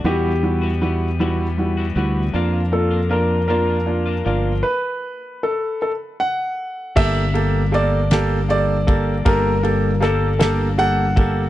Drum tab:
CC |------|------|------|x-----|
RD |------|------|------|-xxxxx|
SD |------|------|------|---o--|
BD |------|------|------|o----o|

CC |------|
RD |xxxxxx|
SD |--oo--|
BD |o----o|